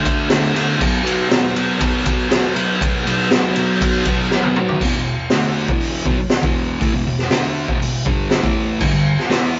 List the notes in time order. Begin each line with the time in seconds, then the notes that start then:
0.04 D3 A3 D4, kick, ride
0.29 D3 A3 D4, snare, ride
0.54 D3 A3 D4, snare, ride
0.78 B2 F#3 B3, kick, crash
1.02 B2 F#3 B3
1.07 ride
1.28 B2 F#3 B3, snare, ride
1.55 B2 F#3 B3, ride
1.79 B2 F#3 B3, kick, ride
2.05 B2 F#3 B3, kick, ride
2.28 B2 F#3 B3, snare, ride
2.55 B2 F#3 B3, ride
2.81 B2 F#3 B3, kick, ride
3.05 B2 F#3 B3, ride
3.31 B2 F#3 B3, snare, ride
3.56 B2 F#3 B3, ride
3.81 B2 F#3 B3, kick, ride
4.05 B2 F#3, kick, ride
4.09 B3
4.31 B2 F#3 B3, snare
4.43 high tom
4.56 B2 F#3 B3, mid tom
4.69 floor tom
4.81 E2 B2, kick, crash
4.96 E2 B2
5.30 D3 A3, snare, open hi-hat
5.34 D4
5.68 E2 B2 E3, kick
5.80 open hi-hat
6.05 B2 F#3, kick
6.17 muted distorted electric guitar stroke
6.30 snare, open hi-hat
6.42 E2 B2 E3, kick
6.80 A2 E3, kick, open hi-hat
6.93 E2 B2
7.06 E2 B2
7.18 snare
7.30 D3 A3 D4, snare, open hi-hat
7.68 E2 B2, kick
7.82 E2 B2, open hi-hat
8.05 G2 D3 G3, kick
8.31 snare, open hi-hat
8.42 A2 E3 A3, kick
8.79 G2 D3, kick, crash
8.93 G2 D3
9.19 snare
9.30 E3 B3 E4, snare, open hi-hat